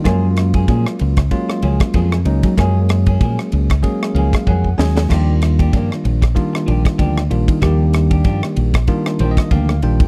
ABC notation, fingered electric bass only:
X:1
M:4/4
L:1/16
Q:"Swing 16ths" 1/4=95
K:Eb
V:1 name="Fingered electric bass" clef=bass
_G,,4 B,, z _D,,2 z2 D,, z F,,2 D,, _G, | _G,,4 B,, z _D,,2 z2 D,, z F,,2 E,,2 | E,,4 G,, z B,,,2 z2 B,,, z D,,2 B,,, E, | E,,4 G,, z B,,,2 z2 B,,, z D,,2 B,,, E,, |]